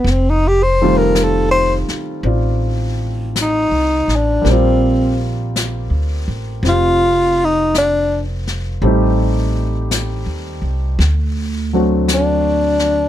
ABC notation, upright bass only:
X:1
M:4/4
L:1/8
Q:"Swing" 1/4=55
K:Fmix
V:1 name="Upright bass" clef=bass
F,,,3 z A,,,2- (3A,,, C,, A,,, | B,,,2- (3B,,, D,, A,,, F,,,4 | A,,,2- (3A,,, E,, C,, D,,4 |]